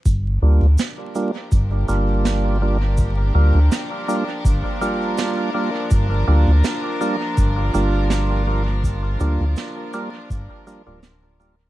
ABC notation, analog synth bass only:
X:1
M:4/4
L:1/16
Q:"Swing 16ths" 1/4=82
K:Gm
V:1 name="Analog synth bass" clef=bass
G,,,2 D,, D,, z4 G,,,2 G,,,6- | G,,,2 D,, D,, z4 G,,, z6 z | G,,,2 D,, D,, z4 G,,,2 G,,,6- | G,,,2 D,, D,, z4 G,,, z2 D,,,4- D,,, |]